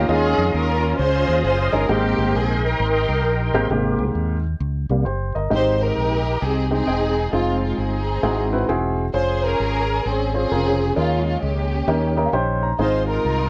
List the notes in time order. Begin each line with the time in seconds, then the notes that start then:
Already playing: C#4 F5 D#6
0.08 D#2 D#3 G#3 C#4 D#4 F4 G#4 D#5
0.38 F2
0.54 D#2 C#4 F4 A#4
0.99 C#2 F4 G#4 C5
1.28 D#2
1.45 F#1 C5
1.73 G1 G#3 C#4 D#4 G#4 A#4
1.89 G#1 G#2 G#3 A#3 C4 G4 A#4 G5 C6
2.18 G1
2.35 A#1 G#4
2.64 D#4 G4 A#4
2.80 G#1
3.09 C2
3.24 A#1
3.53 G#1 G#3 A#3 C4 G4
3.70 G#1 G#2 C3 G#3 A#3 C4 G4
3.99 C2
4.15 D#2
4.61 C#2
4.90 C2 C3 G3 A#3
5.05 F#1 G4 C5
5.35 G1 A#4 D#5
5.51 G#1 G#2 G#3 C4 D#4 G4 C5
5.81 D#4 G4 A#4
5.97 A#1
6.42 C2 C4 D#4 G#4
6.71 G#3 C4 D#4 G4 G#4
6.87 E1 G#3 C4 D#4 G5
7.33 F1 G#3 C4 D#4 F4 G#4
7.63 F4
7.78 G1 C4 D#4 G#4
8.23 G#1 G#2 C4 E4 F#4 G#4
8.53 C4 E4 F#4 B4
8.68 E1 C4 E4 F#4 G#4
9.14 F1 C#4 F4 G#4 C5
9.44 C#4 A#4
9.60 G#1
10.05 G#1 C4 C#4 G#4
10.34 C4 C#4 F4 G#4 C5
10.51 F1 C#3 F4 G#4 A#4
10.96 D#2 D#3 G#3 C#4 D#4 F4 G#4 A#4
11.27 F4
11.42 C#2 A#3 C#4 G4
11.88 D#2 D#3 C#4 D#4 G4 A#4
12.17 C#4 D#4 G4 A#4 D#5
12.26 F5
12.33 A#1 C#4 D#4 G4 C5 G5
12.63 A#5
12.79 G#1 G#2 C4 D#4 F4 G#4 C5
13.09 D#4 F4 A#4
13.25 C2